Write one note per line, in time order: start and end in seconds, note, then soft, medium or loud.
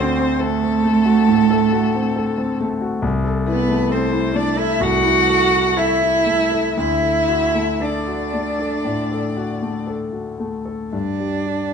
0.00 1.24 D2 medium
0.00 0.44 C4 loud
0.00 0.31 F#4 medium
0.00 0.40 A4 medium
0.00 0.41 C5 medium
0.18 0.53 C4 medium
0.40 2.62 A3 loud
0.40 2.60 A4 medium
0.40 0.75 A4 medium
0.63 0.98 C4 medium
0.84 1.19 A3 medium
1.05 1.41 F#4 medium
1.28 1.64 A2 medium
1.51 1.86 A4 medium
1.72 2.08 F#4 medium
1.95 2.30 C4 medium
2.16 2.52 A4 medium
2.38 2.73 C4 medium
2.61 2.96 A3 medium
2.81 3.04 F#4 medium
3.02 4.78 C2 medium
3.24 3.61 A4 medium
3.46 3.93 B3 loud
3.46 3.83 E4 medium
3.46 3.93 B4 medium
3.69 4.05 A3 medium
3.90 4.35 C4 medium
3.90 4.27 A4 medium
3.90 4.38 C5 medium
4.12 4.50 E4 medium
4.34 4.72 A3 medium
4.34 4.60 D4 loud
4.34 4.59 D5 medium
4.56 4.83 E4 loud
4.56 4.95 A4 medium
4.61 4.85 E5 medium
4.80 6.74 C2 medium
4.80 5.78 F#4 loud
4.80 5.80 F#5 loud
5.04 5.43 E4 medium
5.27 5.68 A4 medium
5.52 5.92 E4 medium
5.77 6.76 E4 loud
5.77 6.18 A4 medium
5.77 6.79 E5 medium
6.02 6.43 E4 medium
6.26 6.68 A3 medium
6.52 6.78 A4 medium
6.77 8.83 D2 medium
6.77 7.83 E4 loud
6.77 7.86 E5 medium
7.03 7.45 A4 medium
7.29 7.71 F#4 medium
7.55 7.98 A3 soft
7.80 9.90 D4 medium
7.80 8.24 A4 medium
7.84 9.91 D5 medium
8.07 8.51 F#4 medium
8.33 8.76 A3 medium
8.59 9.02 A4 medium
8.85 9.28 A2 medium
9.11 9.54 A4 medium
9.37 9.79 F#4 medium
9.62 10.04 A3 medium
9.87 10.29 A4 medium
10.12 10.56 F#4 soft
10.40 10.82 A3 medium
10.65 10.93 A4 medium
10.93 11.73 G2 medium
10.93 11.73 D4 medium
11.20 11.64 G3 soft
11.47 11.73 G4 soft